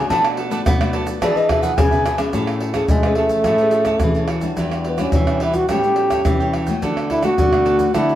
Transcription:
Already playing: nylon-string guitar A3 D4 F#4
0.09 nylon-string guitar B2, cavaquinho D4 A4 B4 D5, flute A5, pandeiro, low agogo, shaker, surdo
0.24 pandeiro, tamborim, shaker
0.37 cavaquinho D4 A4 B4 D5, pandeiro
0.50 nylon-string guitar A3 D4 F#4, cavaquinho D4 A4 B4 D5, pandeiro, shaker
0.66 nylon-string guitar F#3 B3, pandeiro, tamborim, shaker, surdo
0.80 nylon-string guitar A3 D4 F#4, cavaquinho A4 B4 D5, pandeiro, tamborim, shaker
0.93 cavaquinho D4 A4 B4 D5, pandeiro
1.07 cavaquinho A4 B4 D5, pandeiro, shaker
1.21 nylon-string guitar E3 D4 G#4 B4, cavaquinho D4 G#4 B4 E5, flute D5, pandeiro, tamborim, low agogo, shaker, surdo
1.36 nylon-string guitar D4 G#4 B4, flute D#5, pandeiro, shaker
1.48 cavaquinho D4 G#4 B4 E5, flute E5, pandeiro, tamborim, low agogo, surdo
1.62 cavaquinho D4 G#4 B4 E5, flute F#5, pandeiro, shaker
1.77 nylon-string guitar B2 C#3 D4 G#4 B4, flute G#5, pandeiro, tamborim, high agogo, shaker, surdo
1.91 cavaquinho G#4 B4 E5, pandeiro, shaker
2.05 nylon-string guitar B2, cavaquinho D4 G#4 B4 E5, pandeiro, tamborim, shaker
2.18 nylon-string guitar C#4 G#4 B4, cavaquinho G#4 B4 E5, pandeiro, tamborim, high agogo, shaker
2.33 nylon-string guitar A2 A3, cavaquinho G#4 C#5 E5 A5, pandeiro, shaker, surdo
2.47 pandeiro, tamborim, shaker
2.60 cavaquinho G#4 C#5 E5 A5, pandeiro
2.74 nylon-string guitar C#4 G#4 B4, cavaquinho G#4 C#5 E5 A5, pandeiro, tamborim, shaker, surdo
2.88 nylon-string guitar E3 A3, trombone G#3, pandeiro, shaker, surdo
3.03 nylon-string guitar C#4 G#4 B4, cavaquinho C#5 E5 A5, pandeiro, tamborim, shaker
3.15 trombone A3, cavaquinho G#4 C#5 E5 A5, pandeiro
3.29 cavaquinho C#5 E5 A5, pandeiro, shaker, surdo
3.44 nylon-string guitar A2 A3, cavaquinho G#4 C#5 E5, pandeiro, tamborim, shaker, surdo
3.48 cavaquinho A5
3.58 nylon-string guitar C#4 G#4 B4, pandeiro, shaker
3.71 cavaquinho G#4 C#5 E5 A5, pandeiro, shaker
3.85 cavaquinho G#4 C#5 E5 A5, pandeiro, tamborim, shaker, surdo
4.00 nylon-string guitar E3 C#4 G#4, pandeiro, tamborim, shaker, surdo
4.04 nylon-string guitar B4
4.15 cavaquinho C#5 E5 A5, pandeiro, shaker
4.28 cavaquinho G#4 C#5 E5 A5, pandeiro, tamborim
4.41 nylon-string guitar G3 D4 F#4, cavaquinho C#5 E5 A5, pandeiro, shaker, surdo
4.57 nylon-string guitar E2 E3, cavaquinho E4 G4 B4 D5, pandeiro, shaker, surdo
4.72 pandeiro, tamborim, shaker
4.84 trombone B3, cavaquinho E4 G4 B4 D5, pandeiro
4.98 nylon-string guitar G3 D4 F#4, trombone C#4, cavaquinho E4 G4 B4 D5, pandeiro, tamborim, shaker, surdo
5.12 nylon-string guitar B2 E3, pandeiro, shaker, surdo
5.27 nylon-string guitar G3 D4 F#4, cavaquinho G4 B4 D5, pandeiro, tamborim, shaker
5.40 cavaquinho E4 G4 B4 D5, trombone E4, pandeiro
5.54 trombone F#4, cavaquinho G4 B4 D5, pandeiro, shaker, surdo
5.69 nylon-string guitar A2 G3 B3 C#4, cavaquinho E4 A4 C#5 G5, trombone G4, pandeiro, tamborim, shaker, surdo
5.83 nylon-string guitar G3 B3 C#4, pandeiro, shaker
5.96 cavaquinho E4 A4 C#5 G5, pandeiro
6.10 cavaquinho E4 A4 C#5 G5, pandeiro, tamborim, shaker, surdo
6.25 nylon-string guitar E3 G3 B3 C#4, pandeiro, tamborim, shaker, surdo
6.40 cavaquinho A4 C#5 G5, pandeiro, shaker
6.53 cavaquinho E4 A4 C#5 G5, pandeiro, tamborim
6.66 nylon-string guitar A3 B3 F#4, cavaquinho A4 C#5 G5, pandeiro, shaker, surdo
6.82 nylon-string guitar D3, cavaquinho D4 A4 B4 F#5, pandeiro, shaker, surdo
6.97 pandeiro, tamborim, shaker
7.10 cavaquinho D4 A4 B4 F#5, trombone E4, pandeiro, surdo
7.22 nylon-string guitar A3 B3 F#4, cavaquinho D4 A4 B4 F#5, trombone F#4, pandeiro, tamborim, shaker, surdo
7.38 nylon-string guitar A2 D3, pandeiro, shaker, surdo
7.52 nylon-string guitar A3 B3 F#4, cavaquinho A4 B4 F#5, pandeiro, tamborim, shaker
7.65 cavaquinho D4 A4 B4 F#5, pandeiro
7.78 cavaquinho A4 B4 F#5, pandeiro, shaker, surdo
7.94 nylon-string guitar D3 A3 B3 F#4, cavaquinho D4 A4 B4 F#5, trombone E4, pandeiro, tamborim, shaker, surdo
8.09 pandeiro, shaker

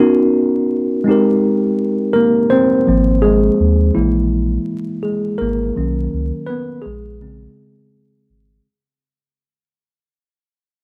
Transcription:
Already playing: tine electric piano B3 C#4
0.00 tine electric piano D#4 F#4 A#4
1.04 tine electric piano G#3 C4 D#4
1.09 tine electric piano G4 A#4
2.13 tine electric piano A#3 A#4
2.50 tine electric piano C4 C5
2.87 sub bass G#1, tine electric piano F3 A#3 C4
3.22 tine electric piano G#3 G#4
3.60 sub bass D#2
3.95 sub bass A#1, tine electric piano E3 G#3 A#3 E4
5.03 tine electric piano G#3 G#4
5.38 sub bass G#1, tine electric piano A#3 A#4
5.76 sub bass B1, tine electric piano D#3 F#3 C#4
6.13 sub bass C#2
6.47 tine electric piano B3 B4
6.82 tine electric piano G#3 G#4
6.86 sub bass A#1
7.21 tine electric piano C#3 G#3 C4
8.30 sub bass G#1

